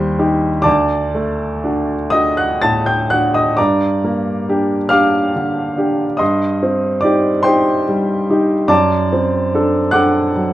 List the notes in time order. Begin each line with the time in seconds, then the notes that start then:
Already playing: D#2 G3 C5 G5 C6
0.19 D#4 G4
0.62 D2 D5 A5 D6
1.15 A3
1.64 D4 F#4
2.10 D4 F#4 D#5 D#6
2.37 F#5 F#6
2.62 A2 A5 A6
2.86 G5 G6
3.10 D4 F#4 F#5 F#6
3.34 D#5 D#6
3.57 G2 D5 A#5 D6
4.04 A#3
4.49 D4 G4
4.89 D4 G4 F5 D6 F6
5.36 D3
5.77 D4 G4
6.17 G2 D#5 C6 D#6
6.63 C4
7.01 D#4 G4 D5 D6
7.43 D#4 C5 G5 C6
7.47 G4
7.89 G3
8.30 D#4 G4
8.68 F#2 D5 A5 D6
9.13 C4
9.55 D4 A4
9.91 D4 A4 F#5 D6 F#6
10.36 F#3